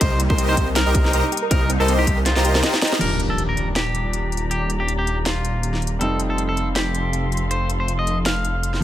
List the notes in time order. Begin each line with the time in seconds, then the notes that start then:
Already playing: C3 A#3
0.01 C2 G3 C4 D#4 G4 A#4 C5 D#5 A#5, kick, closed hi-hat, ride
0.11 D#5
0.20 C4, closed hi-hat
0.30 C2 G4 A#4 C5 D#5 C6, kick
0.38 C4, closed hi-hat
0.49 D#4 C5
0.57 C2 G4, kick, closed hi-hat
0.67 A#4
0.76 C4 A#4, snare, closed hi-hat
0.86 C2 D#4 G4 A#4 C5 D#5 A#5
0.95 G4, kick, closed hi-hat
1.05 A#4, snare
1.13 C2 C4 G4 A#4 C5 D#5 A#5, closed hi-hat
1.24 D#4
1.32 G4, closed hi-hat
1.37 closed hi-hat
1.42 A#4
1.51 C2 C4 G4 A#4 C5 D#5 A#5, kick, closed hi-hat, ride
1.61 D#5
1.70 C4, closed hi-hat
1.80 C2 G4 A4 A#4 C5 D#5 C6
1.88 C4, closed hi-hat
1.99 D#4 G4
2.07 C2 G4 A#4 C5 D#5 C6, kick, closed hi-hat
2.17 A#4
2.26 C4 F4, snare, closed hi-hat
2.36 C2 D#4 G4 A#4 C5 D#5 A#5, snare
2.45 G4, closed hi-hat
2.55 A#4, snare
2.63 G4 A#4 C5 D#5 A#5, snare, closed hi-hat
2.74 C4, snare
2.82 D#5, snare, closed hi-hat
2.87 closed hi-hat
2.92 G4, snare
2.99 D#1 F3 G3 A#3 G4 A#4 D5 A#5, closed hi-hat, crash, impact
3.03 D4
3.20 closed hi-hat
3.30 A4
3.38 closed hi-hat
3.49 A#4
3.57 closed hi-hat
3.76 G4, snare, closed hi-hat
3.95 closed hi-hat
4.13 closed hi-hat
4.32 closed hi-hat
4.37 closed hi-hat
4.51 G4, closed hi-hat
4.70 closed hi-hat
4.80 G4
4.88 closed hi-hat
4.99 G4
5.07 closed hi-hat
5.26 F4, snare, closed hi-hat
5.45 closed hi-hat
5.63 closed hi-hat
5.74 snare
5.82 closed hi-hat
5.87 closed hi-hat
5.99 F1 G3 A3 C4 D#4 A4 F5 C6, closed hi-hat
6.20 closed hi-hat
6.30 A4
6.38 closed hi-hat
6.49 A4
6.57 closed hi-hat
6.76 G4, snare, closed hi-hat
6.95 closed hi-hat
7.13 closed hi-hat
7.32 closed hi-hat
7.37 closed hi-hat
7.51 C5, closed hi-hat
7.70 closed hi-hat
7.80 C5
7.88 closed hi-hat
7.99 D#5
8.07 closed hi-hat
8.26 F5, snare, closed hi-hat
8.45 closed hi-hat
8.63 closed hi-hat
8.74 snare
8.80 F3